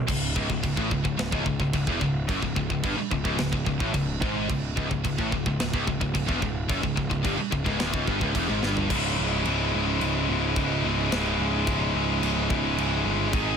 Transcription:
0.08 C#1 C#2, kick, crash
0.36 C#1 C#2, kick
0.50 C#1 C#2, kick
0.64 C#1 C#2, kick, crash
0.77 A1 A2, kick
0.91 C#1 C#2, kick
1.04 C#1 C#2, kick
1.17 C#1 C#2, snare, crash
1.32 C#1 C#2, kick
1.46 C#1 C#2, kick
1.60 C#1 C#2, kick
1.73 C#1 C#2, kick, crash
1.87 E1 E2, kick
2.01 C#1 C#2, kick
2.27 F#1 F#2, kick, crash
2.31 F#2
2.41 C#1 C#2, kick
2.55 C#1 C#2, kick
2.70 C#1 C#2, kick
2.83 G1 G2, kick, crash
2.97 muted picked electric bass stroke, muted distorted electric guitar stroke
3.11 C#1 C#2, kick
3.24 C#1 C#2, kick
3.38 C#1 C#2, snare, crash
3.52 C#1 C#2, kick
3.66 C#1 C#2, kick
3.80 A1 A2, kick
3.94 C#1 C#2, kick, crash
4.22 G#1 G#2, kick
4.50 C#1 C#2, kick, crash
4.77 C#1 C#2, kick
4.90 C#1 C#2, kick
5.05 C#1 C#2, kick, crash
5.19 A1 A2, kick
5.32 C#1 C#2, kick
5.46 C#1 C#2, kick
5.60 C#1 C#2, snare, crash
5.74 C#1 C#2, kick
5.87 C#1 C#2, kick
6.00 C#1 C#2, kick
6.14 C#1 C#2, kick, crash
6.27 E1 E2, kick
6.41 C#1 C#2, kick
6.68 F#1 F#2, kick, crash
6.83 C#1 C#2, kick
6.95 C#1 C#2, kick
7.10 C#1 C#2, kick
7.23 G1 G2, kick, crash
7.38 muted distorted electric guitar stroke, muted picked electric bass stroke
7.51 C#1 C#2, kick
7.65 C#1 C#2, kick
7.78 D1 D2, snare, crash
7.94 C#1 C#2, kick
8.07 G1 G2, kick
8.21 C#1 C#2, kick
8.34 E1 E2, kick, crash
8.49 G#1 G#2
8.62 G1 G2, snare
8.77 floor tom
8.90 C#1 C#2 G#2 C#3 G#3 E4, kick, crash, china
8.98 G#3 E4
9.07 G#3 E4
9.14 G#3 E4
9.18 C#1 G#3 E4
9.30 G#3 E4
9.38 G#3 E4
9.45 C#1 C#2 G#2 C#3 G#3 E4, china
9.54 G#3 E4
9.62 G#3 E4
9.70 C#1 C#2 G#2 G#3 E4
9.74 C#3 E4
9.78 G#3
9.85 G#3 E4
9.93 G#3 E4
10.00 C#1 C#2 G#2 C#3 G#3 E4, china
10.08 G#3 E4
10.16 G#3 E4
10.23 G#3 E4
10.28 C#1 G#3
10.33 E4
10.39 G#3 E4
10.47 G#3 E4
10.55 C#1 C#2 G#2 C#3 G#3 E4, kick, china
10.64 G#3 E4
10.71 G#3 E4
10.79 C#2 G#3 E4
10.84 C#1 G#2 C#3 G#3 E4
10.94 G#3 E4
11.03 G#3 E4
11.11 C#1 C#2 G#2 C#3 G#3 E4, snare, china
11.20 G#3 E4
11.27 G#3 E4
11.33 G#3 E4
11.39 C#1 G#3
11.43 E4
11.49 G#3 E4
11.57 G#3 E4
11.65 C#1 C#2 G#2 C#3 G#3 E4, kick, china
11.73 G#3 E4
11.80 G#3 E4
11.87 G#3 E4
11.94 C#1 C#2 G#2 C#3 G#3 E4
12.03 G#3 E4
12.11 G#3 E4
12.19 C#1 C#2 G#3 E4
12.23 G#2 C#3 G#3 E4, china
12.34 G#3 E4
12.41 G#3 E4
12.49 C#1 G#3 E4, kick
12.57 G#3 E4
12.64 G#3 E4
12.71 G#3 E4
12.77 C#1 C#2 G#2 C#3 G#3 E4, china
12.88 G#3 E4
12.95 G#3 E4
13.03 G1 C#2 G#2 C#3 G#3 E4
13.10 G#3 E4
13.18 G#3 E4
13.25 G#3 E4
13.32 G#1 G#2 D#3 G#3 D#4 G#4, kick, china
13.41 D#4 G#4
13.50 D#4 G#4

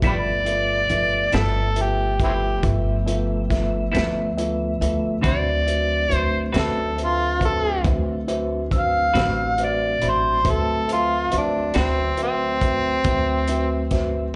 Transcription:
0.01 G1 G2 F3 A3 B3 E4 F4 A4 B4 E5, kick, closed hi-hat
0.07 G4 B4 D5
0.45 F4 A4 B4 E5, closed hi-hat
0.89 G1 F4 A4 B4 E5, closed hi-hat
1.32 G1 G2 F3 B3 E4 F4 A4 B4 E5, snare, closed hi-hat
1.76 F4 A4 B4 E5, closed hi-hat
1.81 G4
2.20 F4 A4 B4 E5, kick, closed hi-hat
2.24 C4 E4 G4
2.62 G1 F4 A4 B4 E5, kick, closed hi-hat
3.06 F4 A4 B4 E5, closed hi-hat
3.50 F4 A4 B4 E5, kick, snare, closed hi-hat
3.92 D2 G2 F3 B3 E4 F4 A4 B4 E5, closed hi-hat
3.97 snare
4.37 F4 A4 B4 E5, closed hi-hat
4.81 D2 F4 A4 B4 E5, closed hi-hat
5.21 D2 D3 F#3 A3 C4 F#4 B4 C5 E5, kick, closed hi-hat
5.26 D4 D5
5.66 F#4 B4 C5 E5, closed hi-hat
6.09 D2 F#4 B4 C5 E5, closed hi-hat
6.15 C5
6.53 D2 D3 C4 F#4 B4 C5 E5, snare, closed hi-hat
6.59 A4
6.96 A4 B4 C5 E5, closed hi-hat
7.05 F4
7.39 F#4 B4 C5 E5, kick, closed hi-hat
7.45 A4
7.83 D2 F#4 B4 C5 E5, kick, closed hi-hat
8.28 F#4 B4 C5 E5, closed hi-hat
8.70 F#4 B4 C5 E6, kick, closed hi-hat
8.77 F5
9.14 A1 D3 C4 F#4 B4 C5 E6, snare, closed hi-hat
9.58 F#4 B4 C5 E5, closed hi-hat
9.64 D5
10.01 A1 F#4 C5 E5 B5, closed hi-hat
10.09 C5
10.44 D2 F#3 A3 C4 F#4 B4 C5 E5, kick, closed hi-hat
10.51 A4
10.88 A4 B4 C5 E5, closed hi-hat
10.93 F4
11.31 D2 F#4 B4 C5 E5, closed hi-hat
11.38 D4
11.74 D2 D3 C4 F#4 B4 C5 E5, snare, closed hi-hat
11.78 C4
12.17 F#4 B4 C5 E5, closed hi-hat
12.23 C4
12.61 F#4 B4 C5 E5, kick, closed hi-hat
13.04 D2 F#4 B4 C5 E5, kick, closed hi-hat
13.48 F#4 B4 C5 E5, closed hi-hat
13.91 F#4 B4 C5 E5, kick, snare, closed hi-hat

